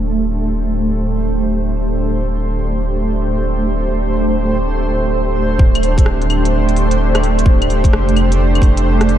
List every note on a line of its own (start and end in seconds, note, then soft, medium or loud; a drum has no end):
0.00 5.58 D1 medium
0.00 9.18 A3 medium
0.00 9.18 D4 medium
0.00 9.18 G4 medium
0.00 9.18 C5 medium
5.59 7.67 D1 loud
5.59 kick loud
5.75 closed hi-hat soft
5.75 claves medium
5.83 open hi-hat medium
5.98 kick loud
5.98 closed hi-hat medium
6.06 cross-stick loud
6.22 closed hi-hat soft
6.30 open hi-hat medium
6.30 claves medium
6.45 closed hi-hat medium
6.69 closed hi-hat soft
6.76 open hi-hat medium
6.91 closed hi-hat medium
7.15 cross-stick loud
7.15 closed hi-hat soft
7.15 claves medium
7.23 open hi-hat medium
7.39 closed hi-hat medium
7.46 kick loud
7.62 closed hi-hat soft
7.62 claves medium
7.69 7.91 D1 medium
7.69 open hi-hat medium
7.84 kick loud
7.84 closed hi-hat medium
7.92 9.18 F1 medium
7.92 cross-stick loud
8.09 closed hi-hat soft
8.16 open hi-hat medium
8.16 claves medium
8.32 closed hi-hat medium
8.55 closed hi-hat soft
8.55 claves medium
8.62 kick loud
8.62 open hi-hat medium
8.77 closed hi-hat medium
9.01 cross-stick loud
9.01 closed hi-hat soft
9.09 open hi-hat medium